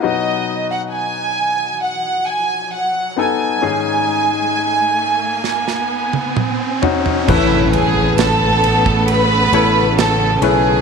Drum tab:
CC |----------------|----------------|x---------------|
RD |----------------|----------------|--x-x-x-x-x-x-x-|
SD |----------------|--------oo------|----o-------o---|
T1 |----------------|-----------o----|----------------|
T2 |----------------|------------o---|----------------|
FT |----------------|--------------oo|----------------|
BD |----------------|----------------|o------o--------|